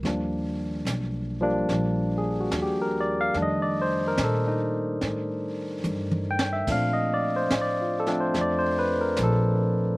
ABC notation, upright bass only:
X:1
M:4/4
L:1/8
Q:"Swing" 1/4=72
K:Fdor
V:1 name="Upright bass" clef=bass
E,,2 =B,,,2 _B,,,2 E,,2 | F,,2 B,,2 =A,,2 G,,2 | B,,2 =A,,2 F,,2 B,,,2 |]